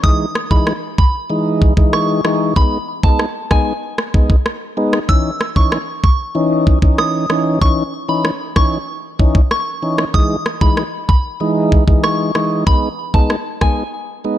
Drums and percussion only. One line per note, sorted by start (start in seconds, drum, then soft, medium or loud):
0.04 kick loud
0.35 cross-stick medium
0.51 kick medium
0.67 cross-stick medium
0.98 kick medium
1.62 kick medium
1.77 kick medium
1.93 cross-stick medium
2.25 cross-stick medium
2.56 kick loud
3.03 kick medium
3.19 cross-stick medium
3.51 kick medium
3.51 cross-stick medium
3.98 cross-stick medium
4.14 kick medium
4.30 kick medium
4.46 cross-stick medium
4.93 cross-stick medium
5.09 kick loud
5.41 cross-stick medium
5.56 kick medium
5.72 cross-stick medium
6.04 kick medium
6.67 kick medium
6.82 kick medium
6.98 cross-stick medium
7.30 cross-stick medium
7.62 kick loud
8.25 cross-stick medium
8.56 kick medium
8.56 cross-stick medium
9.19 kick medium
9.35 kick loud
9.51 cross-stick medium
9.98 cross-stick medium
10.14 kick loud
10.46 cross-stick medium
10.61 kick medium
10.77 cross-stick medium
11.09 kick loud
11.72 kick medium
11.88 kick loud
12.04 cross-stick medium
12.35 cross-stick medium
12.67 kick loud
13.14 kick medium
13.30 cross-stick medium
13.61 kick medium
13.61 cross-stick medium